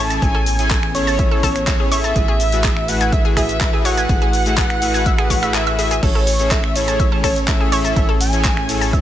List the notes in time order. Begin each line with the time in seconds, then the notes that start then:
Already playing: A1 E3 A3 C#4 A5
0.00 A2 C#4 E4 G#4 A4 E5
0.10 A5, closed hi-hat, shaker
0.22 A1 A2 B3 C#4 E4 G#4 A4 C#5 G#5, kick, closed hi-hat, shaker
0.35 A4
0.46 open hi-hat, shaker
0.59 A2 C#4 E4 G#4 A4 C#5 G#5, closed hi-hat, shaker
0.71 A4, kick, clap, closed hi-hat, shaker
0.83 finger snap
0.95 A2 C#4 E4 G#4 A4 C#5, open hi-hat, shaker
1.07 A5, open hi-hat, shaker
1.19 E5, kick, closed hi-hat, shaker
1.31 A2 C#4 E4 G#4 A4 C#5
1.43 A4, kick, open hi-hat, shaker
1.56 finger snap, closed hi-hat, shaker
1.67 A2 C#4 E4 G#4 A4 C#5, kick, clap, closed hi-hat, shaker
1.80 G#4
1.92 C#4 E4 G#4 A4 C#5 E5, open hi-hat, shaker
2.04 A5, closed hi-hat, shaker
2.16 A1 A3 E4 F#4 G#4 B4 E5, kick, closed hi-hat, shaker
2.28 G#4
2.40 open hi-hat, shaker
2.52 A3 E4 F#4 G#4 B4 E5, closed hi-hat, shaker
2.64 G#4, kick, clap, closed hi-hat, shaker
2.77 finger snap
2.88 A3 E4 F#4 G#4 B4 E5 F#5, open hi-hat, shaker
3.01 G#5, closed hi-hat, shaker
3.12 E5, kick, closed hi-hat, shaker
3.25 A3 E4 F#4 G#4 B4 E5
3.37 G#4 E5, finger snap, kick, open hi-hat, shaker
3.49 closed hi-hat, shaker
3.61 A3 E4 F#4 G#4 B4 E5, kick, clap, closed hi-hat, shaker
3.73 G#4
3.85 A3 E4 F#4 G#4 B4 C#5 F#5, open hi-hat, shaker
3.97 G#5, closed hi-hat, shaker
4.09 A1 A3 E4 F#4 G#4 B4 E5, kick, closed hi-hat, shaker
4.22 G#4, closed hi-hat
4.33 open hi-hat, shaker
4.46 A3 E4 F#4 G#4 B4 E5, closed hi-hat, shaker
4.58 G#4, kick, clap, closed hi-hat, shaker
4.70 finger snap, closed hi-hat
4.82 A3 E4 F#4 G#4 B4 E5, open hi-hat, shaker
4.94 G#5, open hi-hat, shaker
5.06 E5, kick, closed hi-hat, shaker
5.18 A3 E4 F#4 G#4 B4 E5, finger snap, closed hi-hat
5.30 C#5, kick, open hi-hat, shaker
5.43 A3 E4 F#4 G#4 B4 E5, finger snap, closed hi-hat, shaker
5.54 G#4 E5, clap, closed hi-hat, shaker
5.67 E5, closed hi-hat
5.79 A3 E4 F#4 G#4 B4 E5 G#5, open hi-hat, shaker
5.91 G#4, closed hi-hat, shaker
6.03 A1 A2 E3 C#4 E4 G#4 A4 C#5, kick, closed hi-hat, ride, crash, shaker
6.15 A4
6.27 open hi-hat, ride, shaker
6.39 A2 C#4 E4 G#4 A4 C#5, closed hi-hat, shaker
6.51 A4 E5, kick, clap, closed hi-hat, shaker
6.64 finger snap
6.75 A2 C#4 E4 G#4 A4 C#5, open hi-hat, ride, shaker
6.88 A5, closed hi-hat, shaker
7.00 E5, kick, closed hi-hat, ride, shaker
7.12 A2 C#4 E4 G#4 A4 C#5
7.24 A4 C#5, finger snap, kick, open hi-hat, ride, shaker
7.36 closed hi-hat, shaker
7.48 A2 C#4 E4 G#4 A4 C#5 E5, kick, clap, closed hi-hat, ride, shaker
7.60 G#4
7.72 A2 C#4 E4 G#4 A4 C#5 E5, open hi-hat, ride, shaker
7.85 A5, closed hi-hat, shaker
7.96 A1 A2 C#4 E4 G#4 A4 C#5 E5, kick, closed hi-hat, ride, shaker
8.09 A4
8.21 G#5, open hi-hat, ride, shaker
8.33 A2 C#4 E4 G#4 A4 C#5, closed hi-hat, shaker
8.45 A4, kick, clap, closed hi-hat, shaker
8.57 finger snap
8.69 A2 C#4 E4 G#4 A4 C#5, open hi-hat, ride, shaker
8.81 A5, open hi-hat, shaker
8.93 E5, kick, closed hi-hat, ride, shaker